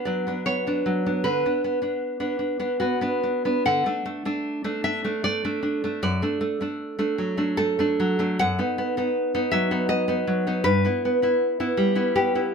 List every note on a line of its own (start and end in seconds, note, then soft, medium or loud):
0.00 0.26 B3 soft
0.00 0.27 D4 soft
0.05 0.85 F#3 soft
0.05 0.44 D5 medium
0.27 0.45 B3 soft
0.27 0.66 D4 soft
0.46 0.65 B3 soft
0.46 1.21 C#5 medium
0.67 1.05 B3 soft
0.67 1.05 D4 soft
0.86 1.25 F#3 soft
1.06 1.23 B3 soft
1.06 1.24 D4 soft
1.24 1.43 D3 soft
1.24 2.77 B4 medium
1.46 1.63 B3 soft
1.46 1.81 D4 soft
1.64 1.81 B3 soft
1.82 2.19 B3 soft
1.82 2.19 D4 soft
2.20 2.58 B3 soft
2.20 2.38 D4 soft
2.39 2.59 D4 soft
2.60 2.79 B3 soft
2.60 3.01 D4 soft
2.80 3.00 B3 soft
2.80 3.63 F#4 medium
3.01 3.44 B3 soft
3.01 3.22 D4 soft
3.23 3.44 D4 soft
3.45 3.64 B3 soft
3.45 3.65 D4 soft
3.66 3.86 D3 medium
3.66 4.80 F#5 medium
3.86 4.04 A3 soft
3.86 4.24 D4 soft
4.06 4.24 A3 soft
4.25 4.63 A3 soft
4.25 4.64 D4 soft
4.64 5.03 A3 soft
4.64 4.83 D4 medium
4.84 5.04 D4 soft
4.84 5.22 E5 medium
5.04 5.24 A3 soft
5.04 5.43 D4 medium
5.24 5.43 A3 soft
5.24 5.98 D5 medium
5.45 5.83 A3 soft
5.45 5.61 D4 soft
5.63 5.84 D4 soft
5.84 6.00 A3 soft
5.84 6.01 D4 soft
6.03 6.21 F#2 medium
6.03 7.52 D5 medium
6.22 6.40 A3 soft
6.22 6.61 D4 soft
6.41 6.59 A3 soft
6.61 6.97 A3 soft
6.61 6.98 D4 medium
6.99 7.36 A3 soft
6.99 7.36 D4 medium
7.18 7.98 F#3 soft
7.37 7.57 A3 soft
7.37 7.79 D4 medium
7.57 7.78 A3 medium
7.57 8.36 A4 medium
7.79 8.18 A3 medium
7.79 8.19 D4 medium
8.00 8.39 F#3 medium
8.19 8.37 A3 medium
8.19 8.37 D4 medium
8.39 8.58 F#2 medium
8.39 9.50 F#5 loud
8.59 8.77 B3 soft
8.59 8.96 D#4 medium
8.78 8.96 B3 medium
8.97 9.33 B3 soft
8.97 9.33 D#4 medium
9.35 9.70 B3 medium
9.35 9.70 D#4 medium
9.52 10.26 F#3 soft
9.52 9.88 E5 medium
9.71 9.88 B3 medium
9.71 10.08 D#4 medium
9.89 10.07 B3 soft
9.89 10.61 D#5 medium
10.08 10.45 B3 medium
10.08 10.46 D#4 soft
10.27 10.65 F#3 medium
10.47 10.63 B3 soft
10.47 10.64 D#4 medium
10.64 10.83 G2 medium
10.64 12.12 B4 loud
10.85 11.04 B3 soft
10.85 11.22 E4 soft
11.05 11.21 B3 soft
11.22 11.59 B3 soft
11.22 11.59 E4 medium
11.60 11.94 B3 soft
11.60 11.95 E4 medium
11.77 12.54 G3 medium
11.95 12.14 B3 soft
11.95 12.34 E4 medium
12.16 12.34 B3 medium
12.16 12.54 G4 medium
12.35 12.54 B3 soft
12.35 12.54 E4 soft